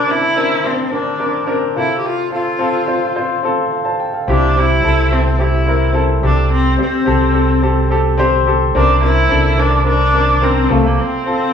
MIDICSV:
0, 0, Header, 1, 4, 480
1, 0, Start_track
1, 0, Tempo, 559180
1, 1757, Time_signature, 4, 2, 24, 8
1, 9899, End_track
2, 0, Start_track
2, 0, Title_t, "Grand piano"
2, 0, Program_c, 0, 0
2, 0, Note_on_c, 0, 48, 49
2, 0, Note_on_c, 0, 60, 76
2, 0, Note_on_c, 0, 62, 69
2, 0, Note_on_c, 0, 70, 79
2, 5, Control_c, 0, 64, 127
2, 60, Note_off_c, 0, 60, 0
2, 60, Note_on_c, 0, 60, 54
2, 65, Note_off_c, 0, 62, 0
2, 65, Note_on_c, 0, 62, 51
2, 74, Note_off_c, 0, 70, 0
2, 74, Note_on_c, 0, 70, 61
2, 294, Note_off_c, 0, 60, 0
2, 298, Note_off_c, 0, 62, 0
2, 302, Note_off_c, 0, 70, 0
2, 307, Note_on_c, 0, 60, 75
2, 312, Note_on_c, 0, 62, 67
2, 318, Note_on_c, 0, 70, 78
2, 515, Note_off_c, 0, 48, 0
2, 528, Note_off_c, 0, 60, 0
2, 536, Note_off_c, 0, 62, 0
2, 541, Note_on_c, 0, 60, 59
2, 542, Note_off_c, 0, 70, 0
2, 549, Note_on_c, 0, 62, 56
2, 555, Note_on_c, 0, 70, 62
2, 765, Note_off_c, 0, 60, 0
2, 775, Note_off_c, 0, 62, 0
2, 778, Note_on_c, 0, 60, 54
2, 781, Note_off_c, 0, 70, 0
2, 787, Note_on_c, 0, 62, 51
2, 794, Note_on_c, 0, 70, 60
2, 1007, Note_off_c, 0, 60, 0
2, 1012, Note_off_c, 0, 62, 0
2, 1017, Note_off_c, 0, 70, 0
2, 1020, Note_on_c, 0, 60, 58
2, 1025, Note_on_c, 0, 62, 54
2, 1030, Note_on_c, 0, 70, 66
2, 1245, Note_off_c, 0, 60, 0
2, 1246, Note_off_c, 0, 62, 0
2, 1253, Note_off_c, 0, 70, 0
2, 1258, Note_on_c, 0, 60, 74
2, 1259, Note_on_c, 0, 62, 61
2, 1266, Note_on_c, 0, 70, 78
2, 1491, Note_off_c, 0, 60, 0
2, 1495, Note_off_c, 0, 62, 0
2, 1498, Note_off_c, 0, 70, 0
2, 1504, Note_on_c, 0, 60, 59
2, 1508, Note_on_c, 0, 65, 56
2, 1510, Note_on_c, 0, 48, 49
2, 1516, Note_on_c, 0, 69, 68
2, 1527, Control_c, 0, 64, 0
2, 1657, Control_c, 0, 64, 127
2, 1964, Note_off_c, 0, 60, 0
2, 1967, Note_off_c, 0, 65, 0
2, 1970, Note_off_c, 0, 69, 0
2, 1980, Note_on_c, 0, 60, 55
2, 1990, Note_on_c, 0, 65, 50
2, 1993, Note_on_c, 0, 69, 61
2, 2199, Note_off_c, 0, 48, 0
2, 2209, Note_off_c, 0, 60, 0
2, 2214, Note_off_c, 0, 65, 0
2, 2222, Note_off_c, 0, 69, 0
2, 2222, Note_on_c, 0, 60, 76
2, 2227, Note_on_c, 0, 65, 67
2, 2236, Note_on_c, 0, 69, 78
2, 2444, Note_off_c, 0, 60, 0
2, 2453, Note_off_c, 0, 65, 0
2, 2457, Note_on_c, 0, 60, 61
2, 2463, Note_off_c, 0, 69, 0
2, 2466, Note_on_c, 0, 65, 52
2, 2472, Note_on_c, 0, 72, 66
2, 2694, Note_off_c, 0, 60, 0
2, 2698, Note_off_c, 0, 65, 0
2, 2701, Note_off_c, 0, 72, 0
2, 2707, Note_on_c, 0, 60, 65
2, 2712, Note_on_c, 0, 65, 62
2, 2716, Note_on_c, 0, 72, 72
2, 2932, Note_off_c, 0, 60, 0
2, 2942, Note_off_c, 0, 65, 0
2, 2943, Note_off_c, 0, 72, 0
2, 2945, Note_on_c, 0, 60, 68
2, 2955, Note_on_c, 0, 65, 60
2, 2960, Note_on_c, 0, 69, 73
2, 3178, Note_off_c, 0, 60, 0
2, 3179, Note_off_c, 0, 69, 0
2, 3183, Note_off_c, 0, 65, 0
2, 3186, Note_on_c, 0, 77, 48
2, 3192, Note_on_c, 0, 69, 40
2, 3304, Note_on_c, 0, 81, 56
2, 3305, Note_off_c, 0, 77, 0
2, 3308, Note_off_c, 0, 69, 0
2, 3312, Note_on_c, 0, 72, 47
2, 3424, Note_off_c, 0, 81, 0
2, 3428, Note_off_c, 0, 72, 0
2, 3432, Note_on_c, 0, 79, 52
2, 3548, Note_off_c, 0, 79, 0
2, 3548, Note_on_c, 0, 77, 46
2, 3556, Note_on_c, 0, 69, 37
2, 3669, Note_on_c, 0, 60, 74
2, 3675, Note_on_c, 0, 64, 71
2, 3679, Note_on_c, 0, 48, 51
2, 3685, Note_on_c, 0, 67, 81
2, 3686, Control_c, 0, 64, 0
2, 3780, Note_off_c, 0, 77, 0
2, 3784, Note_off_c, 0, 69, 0
2, 3860, Control_c, 0, 64, 127
2, 3900, Note_off_c, 0, 60, 0
2, 3903, Note_off_c, 0, 64, 0
2, 3908, Note_off_c, 0, 67, 0
2, 3913, Note_on_c, 0, 60, 57
2, 3920, Note_on_c, 0, 64, 52
2, 3925, Note_on_c, 0, 67, 65
2, 4131, Note_off_c, 0, 60, 0
2, 4140, Note_off_c, 0, 64, 0
2, 4143, Note_on_c, 0, 60, 69
2, 4148, Note_off_c, 0, 67, 0
2, 4153, Note_on_c, 0, 64, 67
2, 4159, Note_on_c, 0, 69, 80
2, 4363, Note_off_c, 0, 48, 0
2, 4376, Note_off_c, 0, 60, 0
2, 4380, Note_off_c, 0, 64, 0
2, 4385, Note_off_c, 0, 69, 0
2, 4389, Note_on_c, 0, 60, 58
2, 4393, Note_on_c, 0, 64, 54
2, 4404, Note_on_c, 0, 69, 65
2, 4611, Note_off_c, 0, 60, 0
2, 4613, Note_off_c, 0, 64, 0
2, 4624, Note_on_c, 0, 60, 55
2, 4626, Note_on_c, 0, 64, 53
2, 4627, Note_off_c, 0, 69, 0
2, 4634, Note_on_c, 0, 67, 60
2, 4847, Note_off_c, 0, 60, 0
2, 4853, Note_off_c, 0, 64, 0
2, 4860, Note_on_c, 0, 60, 59
2, 4862, Note_off_c, 0, 67, 0
2, 4866, Note_on_c, 0, 64, 51
2, 4876, Note_on_c, 0, 70, 65
2, 5076, Note_off_c, 0, 60, 0
2, 5087, Note_off_c, 0, 64, 0
2, 5089, Note_on_c, 0, 60, 73
2, 5100, Note_on_c, 0, 64, 63
2, 5103, Note_off_c, 0, 70, 0
2, 5103, Note_on_c, 0, 69, 81
2, 5330, Note_off_c, 0, 60, 0
2, 5335, Note_off_c, 0, 64, 0
2, 5337, Note_off_c, 0, 69, 0
2, 5346, Note_on_c, 0, 60, 62
2, 5348, Note_on_c, 0, 67, 58
2, 5351, Note_on_c, 0, 48, 54
2, 5355, Note_on_c, 0, 69, 68
2, 5367, Control_c, 0, 64, 0
2, 5515, Control_c, 0, 64, 127
2, 5798, Note_off_c, 0, 60, 0
2, 5806, Note_off_c, 0, 67, 0
2, 5809, Note_off_c, 0, 69, 0
2, 5811, Note_on_c, 0, 60, 61
2, 5823, Note_on_c, 0, 67, 52
2, 5827, Note_on_c, 0, 72, 66
2, 6039, Note_off_c, 0, 48, 0
2, 6039, Note_off_c, 0, 60, 0
2, 6048, Note_off_c, 0, 67, 0
2, 6052, Note_on_c, 0, 60, 80
2, 6058, Note_off_c, 0, 72, 0
2, 6061, Note_on_c, 0, 67, 70
2, 6071, Note_on_c, 0, 69, 83
2, 6281, Note_off_c, 0, 60, 0
2, 6287, Note_off_c, 0, 67, 0
2, 6293, Note_on_c, 0, 60, 62
2, 6294, Note_off_c, 0, 69, 0
2, 6300, Note_on_c, 0, 67, 56
2, 6306, Note_on_c, 0, 69, 66
2, 6531, Note_off_c, 0, 60, 0
2, 6535, Note_off_c, 0, 67, 0
2, 6538, Note_off_c, 0, 69, 0
2, 6544, Note_on_c, 0, 60, 67
2, 6549, Note_on_c, 0, 67, 65
2, 6553, Note_on_c, 0, 69, 80
2, 6770, Note_off_c, 0, 60, 0
2, 6777, Note_off_c, 0, 67, 0
2, 6781, Note_off_c, 0, 69, 0
2, 6782, Note_on_c, 0, 60, 68
2, 6790, Note_on_c, 0, 67, 69
2, 6794, Note_on_c, 0, 69, 85
2, 7005, Note_off_c, 0, 60, 0
2, 7015, Note_off_c, 0, 67, 0
2, 7018, Note_on_c, 0, 60, 94
2, 7022, Note_off_c, 0, 69, 0
2, 7028, Note_on_c, 0, 67, 86
2, 7034, Note_on_c, 0, 72, 97
2, 7249, Note_off_c, 0, 60, 0
2, 7257, Note_off_c, 0, 67, 0
2, 7261, Note_off_c, 0, 72, 0
2, 7261, Note_on_c, 0, 60, 69
2, 7270, Note_on_c, 0, 67, 67
2, 7275, Note_on_c, 0, 69, 78
2, 7495, Note_off_c, 0, 60, 0
2, 7499, Note_off_c, 0, 67, 0
2, 7502, Note_off_c, 0, 69, 0
2, 7510, Note_on_c, 0, 48, 55
2, 7510, Note_on_c, 0, 60, 82
2, 7515, Note_on_c, 0, 62, 74
2, 7519, Note_on_c, 0, 70, 83
2, 7526, Control_c, 0, 64, 0
2, 7671, Control_c, 0, 64, 127
2, 7729, Note_off_c, 0, 60, 0
2, 7737, Note_off_c, 0, 62, 0
2, 7742, Note_on_c, 0, 60, 60
2, 7744, Note_off_c, 0, 70, 0
2, 7750, Note_on_c, 0, 62, 53
2, 7758, Note_on_c, 0, 70, 69
2, 7964, Note_off_c, 0, 60, 0
2, 7976, Note_off_c, 0, 62, 0
2, 7977, Note_on_c, 0, 60, 78
2, 7983, Note_off_c, 0, 70, 0
2, 7989, Note_on_c, 0, 62, 68
2, 7994, Note_on_c, 0, 69, 85
2, 8198, Note_off_c, 0, 48, 0
2, 8208, Note_off_c, 0, 60, 0
2, 8212, Note_off_c, 0, 62, 0
2, 8221, Note_off_c, 0, 69, 0
2, 8221, Note_on_c, 0, 60, 65
2, 8225, Note_on_c, 0, 62, 57
2, 8232, Note_on_c, 0, 70, 68
2, 8434, Note_off_c, 0, 60, 0
2, 8444, Note_off_c, 0, 62, 0
2, 8447, Note_on_c, 0, 60, 61
2, 8452, Note_off_c, 0, 70, 0
2, 8457, Note_on_c, 0, 62, 57
2, 8465, Note_on_c, 0, 70, 67
2, 8682, Note_off_c, 0, 60, 0
2, 8692, Note_off_c, 0, 62, 0
2, 8695, Note_on_c, 0, 60, 65
2, 8697, Note_off_c, 0, 70, 0
2, 8705, Note_on_c, 0, 62, 57
2, 8712, Note_on_c, 0, 70, 71
2, 8929, Note_off_c, 0, 60, 0
2, 8936, Note_off_c, 0, 62, 0
2, 8940, Note_off_c, 0, 70, 0
2, 8942, Note_on_c, 0, 60, 75
2, 8950, Note_on_c, 0, 62, 72
2, 8953, Note_on_c, 0, 70, 86
2, 9168, Note_off_c, 0, 60, 0
2, 9178, Note_off_c, 0, 62, 0
2, 9180, Note_off_c, 0, 70, 0
2, 9181, Note_on_c, 0, 60, 68
2, 9185, Note_on_c, 0, 65, 62
2, 9186, Note_on_c, 0, 48, 58
2, 9190, Note_on_c, 0, 69, 75
2, 9203, Control_c, 0, 64, 0
2, 9360, Control_c, 0, 64, 127
2, 9641, Note_off_c, 0, 60, 0
2, 9643, Note_off_c, 0, 65, 0
2, 9645, Note_off_c, 0, 69, 0
2, 9666, Note_on_c, 0, 60, 59
2, 9671, Note_on_c, 0, 65, 53
2, 9677, Note_on_c, 0, 69, 69
2, 9875, Note_off_c, 0, 48, 0
2, 9892, Note_off_c, 0, 60, 0
2, 9897, Note_off_c, 0, 65, 0
2, 9899, Note_off_c, 0, 69, 0
2, 9899, End_track
3, 0, Start_track
3, 0, Title_t, "Viola"
3, 0, Program_c, 1, 41
3, 0, Note_on_c, 1, 62, 82
3, 93, Note_on_c, 1, 64, 95
3, 106, Note_off_c, 1, 62, 0
3, 574, Note_on_c, 1, 60, 77
3, 587, Note_off_c, 1, 64, 0
3, 814, Note_on_c, 1, 62, 68
3, 827, Note_off_c, 1, 60, 0
3, 1286, Note_off_c, 1, 62, 0
3, 1528, Note_on_c, 1, 64, 78
3, 1690, Note_off_c, 1, 64, 0
3, 1704, Note_on_c, 1, 67, 60
3, 1770, Note_on_c, 1, 65, 89
3, 1783, Note_off_c, 1, 67, 0
3, 2003, Note_off_c, 1, 65, 0
3, 2009, Note_on_c, 1, 65, 84
3, 2929, Note_off_c, 1, 65, 0
3, 3697, Note_on_c, 1, 62, 80
3, 3940, Note_on_c, 1, 64, 92
3, 3953, Note_off_c, 1, 62, 0
3, 4403, Note_on_c, 1, 60, 74
3, 4416, Note_off_c, 1, 64, 0
3, 4642, Note_on_c, 1, 64, 80
3, 4655, Note_off_c, 1, 60, 0
3, 5119, Note_off_c, 1, 64, 0
3, 5370, Note_on_c, 1, 62, 85
3, 5587, Note_off_c, 1, 62, 0
3, 5606, Note_on_c, 1, 60, 86
3, 5824, Note_off_c, 1, 60, 0
3, 5855, Note_on_c, 1, 60, 77
3, 6771, Note_off_c, 1, 60, 0
3, 7526, Note_on_c, 1, 62, 85
3, 7744, Note_off_c, 1, 62, 0
3, 7754, Note_on_c, 1, 64, 99
3, 8240, Note_on_c, 1, 62, 83
3, 8253, Note_off_c, 1, 64, 0
3, 8477, Note_off_c, 1, 62, 0
3, 8481, Note_on_c, 1, 62, 96
3, 8957, Note_on_c, 1, 60, 84
3, 8970, Note_off_c, 1, 62, 0
3, 9203, Note_on_c, 1, 57, 75
3, 9216, Note_off_c, 1, 60, 0
3, 9327, Note_on_c, 1, 58, 70
3, 9340, Note_off_c, 1, 57, 0
3, 9444, Note_on_c, 1, 60, 84
3, 9457, Note_off_c, 1, 58, 0
3, 9899, Note_off_c, 1, 60, 0
3, 9899, End_track
4, 0, Start_track
4, 0, Title_t, "Fingered electric bass"
4, 0, Program_c, 2, 33
4, 3673, Note_on_c, 2, 36, 84
4, 4121, Note_off_c, 2, 36, 0
4, 4154, Note_on_c, 2, 36, 79
4, 5321, Note_off_c, 2, 36, 0
4, 5350, Note_on_c, 2, 36, 80
4, 5799, Note_off_c, 2, 36, 0
4, 6073, Note_on_c, 2, 36, 86
4, 7479, Note_off_c, 2, 36, 0
4, 7510, Note_on_c, 2, 36, 90
4, 7958, Note_off_c, 2, 36, 0
4, 7990, Note_on_c, 2, 36, 89
4, 9157, Note_off_c, 2, 36, 0
4, 9191, Note_on_c, 2, 36, 79
4, 9416, Note_off_c, 2, 36, 0
4, 9899, End_track
0, 0, End_of_file